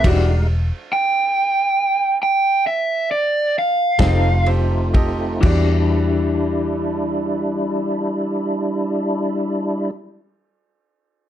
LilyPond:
<<
  \new Staff \with { instrumentName = "Overdriven electric guitar" } { \time 12/8 \key e \minor \tempo 4. = 41 r4 g''4. g''8 e''8 d''8 f''4 r4 | r1. | }
  \new Staff \with { instrumentName = "Upright piano" } { \time 12/8 \key e \minor <fis' g' d''>8 r1 <g' a' ees''>8 <g' a' c''>8 <g' a' ees''>8 | <fis' g' d''>1. | }
  \new Staff \with { instrumentName = "Tonewheel organ" } { \time 12/8 \key e \minor <g gis dis' f''>8 r1 <a c' ees' f'>4. | <g d' e'>1. | }
  \new Staff \with { instrumentName = "Clean electric guitar" } { \time 12/8 \key e \minor <e g d' fis'>8 r1 <f c' ees' a'>8 r4 | <e g d'>1. | }
  \new Staff \with { instrumentName = "Fingered electric bass" } { \clef bass \time 12/8 \key e \minor e,,4 r2. r8 f,,4. | e,1. | }
  \new DrumStaff \with { instrumentName = "Drums" } \drummode { \time 12/8 <cymc bd cymr>4. r4. r4. <bd cymr sn>8 cymr8 <bd cymr>8 | <cymc bd>4. r4. r4. r4. | }
>>